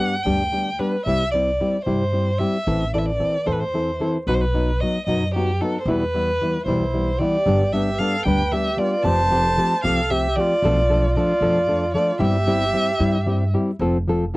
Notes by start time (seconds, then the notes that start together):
Already playing: G3 F#5
0.00 B3 D4 G4
0.23 D2 G2 D3 G3 B3 D4 G4 G5
0.52 G3 B3 D4 G4
0.79 G3 B3 D4 G4 B4
1.06 C2 C3 G3 C4 E4 G4 E5
1.32 G3 C4 E4 D5
1.36 G4
1.61 G3 C4 E4 G4
1.85 G2 C3 G3 C4 E4 G4 C5
2.12 G3 C4 E4 G4
2.38 G3 C4 E4 G4 E5
2.66 A1 A2 E3 C4 E4 A4
2.94 E3 C4 E4 A4 D5
2.98 E5
3.05 D5
3.19 E3 C4 E4 A4
3.46 E2 A2 E3 C4 E4 A4 C5
3.52 B4
3.60 C5
3.74 E3 C4 E4 A4
4.00 E3 C4 E4 A4
4.27 B1 B2 F#3 B3 D#4 F#4 B4
4.34 C5
4.41 B4
4.54 F#3 B3 D#4 F#4
4.80 F#3 B3 D#4 F#4 D#5
5.07 F#2 B2 F#3 B3 D#4 F#4 D#5
5.35 F#3 B3 D#4 F#4 G4
5.61 F#3 B3 D#4 F#4 A4
5.80 C5
5.86 E2 B2 E3 G3 B3 E4 B4
6.14 E3 G3 B3 E4
6.41 E3 G3 B3 E4
6.64 B1 E2 B2 E3 G3 E4 C5
6.68 B3
6.93 E3 G3 B3 E4
7.18 E3 G3 B3 E4 G4 D5
7.46 G1 G2 D3 G3 B3 D4 G4
7.72 G3 B3 D4 G4 E5
7.98 G3 B3 D4 G4 A4 F5
8.26 D2 G2 D3 G3 B3 D4 G4 B4 G5
8.52 G3 B3 D4 G4 E5
8.77 G3 B3 D4 F4 G4 D5
9.03 F1 F3 A3 C4 G4 C5 A5
9.30 F3 A3 C4 G4
9.57 F3 A3 C4 G4
9.84 C2 F3 A3 C4 G4 A4 F5
10.09 F3 A3 C4 G4 E5
10.36 F3 A3 C4 G4 D5
10.40 F4
10.62 B1 B2 F3 A3 D4 A4
10.89 F3 A3 D4 A4
11.16 F3 A3 D4 F4 A4 D5
11.41 F2 B2 F3 A3 D4 A4
11.67 F3 A3 D4 A4
11.94 F3 A3 D4 F4 A4 D5
12.19 G1 G3 C4 E4 G4 E5
12.47 G3 C4 E4 G4
12.73 G3 C4 E4 G4
13.00 G2 G3 C4 E4 G4
13.26 G3 C4 E4 G4
13.54 G3 C4 E4 G4
13.79 F1 F3 C4 F4 A4
14.08 F3 C4 F4 A4